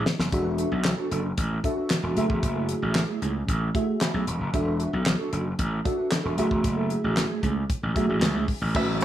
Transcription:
0.06 snare
0.18 slap bass F#1, muted clean electric guitar stroke, snare
0.31 slap bass E1, fm electric piano D4 F#4 G#4 E5, muted clean electric guitar stroke, kick, closed hi-hat
0.40 fm electric piano A4
0.45 clean electric guitar D4 F#4 B4
0.58 clean electric guitar D4 F#4 B4, closed hi-hat
0.71 slap bass B1, muted clean electric guitar stroke
0.85 muted clean electric guitar stroke, snare, clap, closed hi-hat
0.98 clean electric guitar D4 F#4 A4
1.11 slap bass F#1, clean electric guitar D4 F#4 A4, closed hi-hat
1.24 muted clean electric guitar stroke
1.38 slap bass A1, muted clean electric guitar stroke, kick, closed hi-hat
1.51 muted clean electric guitar stroke
1.64 clean electric guitar D4 F#4 A4, fm electric piano D4 F#4 A4 E5, kick, closed hi-hat
1.77 clean electric guitar D4 F#4 B4
1.90 snare, clap, closed hi-hat
2.03 slap bass E1, clean electric guitar D4 F#4 A4
2.16 slap bass F#1, clean electric guitar A3 E4 A4, fm electric piano A3 F#4 G#4 E5, closed hi-hat
2.30 slap bass E1, kick
2.43 slap bass F#1, kick, closed hi-hat
2.55 clean electric guitar A3 E4 A4
2.69 clean electric guitar A3 E4 G#4, closed hi-hat
2.82 slap bass A1
2.95 muted clean electric guitar stroke, snare, clap, closed hi-hat
3.08 clean electric guitar A3 E4 G#4
3.22 slap bass C#2, clean electric guitar A3 E4 G#4, closed hi-hat
3.35 muted clean electric guitar stroke
3.48 slap bass A1, kick, closed hi-hat
3.61 muted clean electric guitar stroke
3.74 clean electric guitar A3 E4 G#4, fm electric piano A3 F#4 G#4 E5, kick, closed hi-hat
3.88 muted clean electric guitar stroke
4.01 fm electric piano B5, muted clean electric guitar stroke, snare, clap, closed hi-hat
4.13 slap bass B1, clean electric guitar A3 E4 G#4
4.27 slap bass E1, muted clean electric guitar stroke, closed hi-hat
4.40 slap bass F#1, muted clean electric guitar stroke
4.54 slap bass E1, fm electric piano D4 F#4 A4 E5, kick, closed hi-hat
4.66 clean electric guitar D4 F#4 B4
4.79 clean electric guitar D4 F#4 B4, closed hi-hat
4.93 slap bass B1, muted clean electric guitar stroke
5.06 muted clean electric guitar stroke, snare, clap, closed hi-hat
5.19 clean electric guitar D4 F#4 A4
5.32 slap bass F#1, clean electric guitar D4 F#4, closed hi-hat
5.45 muted clean electric guitar stroke
5.58 slap bass A1, muted clean electric guitar stroke, kick, closed hi-hat
5.72 muted clean electric guitar stroke
5.84 clean electric guitar D4 F#4 A4, fm electric piano D4 F#4 A4 E5, kick, closed hi-hat
5.98 clean electric guitar D4 F#4 B4
6.11 snare, clap, closed hi-hat
6.24 slap bass E1, clean electric guitar D4 F#4 A4
6.37 slap bass F#1, clean electric guitar A3 E4 A4, fm electric piano A3 F#4 G#4 E5, closed hi-hat
6.51 slap bass E1, muted clean electric guitar stroke, kick
6.64 slap bass F#1, muted clean electric guitar stroke, kick, closed hi-hat
6.76 clean electric guitar A3 E4 A4
6.90 clean electric guitar A3 E4 G#4, closed hi-hat
7.03 slap bass A1, muted clean electric guitar stroke
7.17 snare, clap, closed hi-hat
7.29 clean electric guitar A3 E4 G#4
7.42 slap bass C#2, clean electric guitar A3 E4 G#4, kick, closed hi-hat
7.56 muted clean electric guitar stroke
7.69 muted clean electric guitar stroke, kick, closed hi-hat
7.82 slap bass A1, muted clean electric guitar stroke
7.95 slap bass B1, clean electric guitar A3 E4 G#4, fm electric piano A3 F#4 G#4 E5, kick, closed hi-hat
8.08 slap bass A1, clean electric guitar A3 E4 G#4
8.22 slap bass C#2, snare, clap, closed hi-hat
8.34 slap bass C#2, clean electric guitar A3 E4 G#4
8.48 kick, open hi-hat
8.61 slap bass A1, muted clean electric guitar stroke
8.74 slap bass A1, string machine C#3 F#3 A3 B3 E4, fm electric piano A3 C#4 F#4 B4, clean electric guitar C#4 F#4 B4, five-string banjo E5, kick, crash
8.88 muted clean electric guitar stroke
9.01 fm electric piano A3 C#4 F#4 B4, closed hi-hat

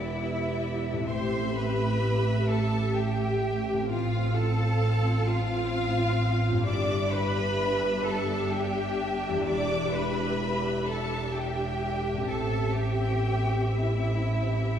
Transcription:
Already playing: double bass section E1, harp E2 D4 E4 G4, viola section B3 G4, cello section E4, violin section D5 E5
0.92 harp A2
0.97 harp C4
1.01 harp E4
1.06 harp G4, violin section C6
1.10 double bass section A1, viola section A3 G4, cello section C5, violin section E5
1.56 cello section B4, violin section B5
2.50 cello section A4, violin section A5
2.97 cello section G4, violin section G5
3.73 harp A2
3.77 harp C4
3.82 harp F4
3.90 viola section C4 F4, cello section F4, violin section F5
4.37 cello section A4, violin section A5
5.29 cello section F4, violin section F5
6.50 harp G2
6.54 harp D4
6.59 harp E4
6.63 double bass section G1, harp G4, viola section G4, cello section D5, violin section E5 D6
6.67 viola section D4
7.14 cello section B4, violin section B5
8.07 cello section A4, violin section A5
8.53 cello section G4, violin section G5
9.29 harp E2
9.34 harp D4
9.38 harp E4
9.43 double bass section E1, harp G4
9.47 cello section D5, violin section D6
9.94 cello section B4, violin section B5
10.88 cello section A4, violin section A5
11.35 cello section G4, violin section G5
12.13 harp A2
12.17 harp C4
12.22 harp G4
12.26 harp A4, violin section E5 A5
12.31 double bass section A1, viola section C4 G4, cello section A4
12.78 cello section G4, violin section G5
13.75 cello section E4, violin section E5

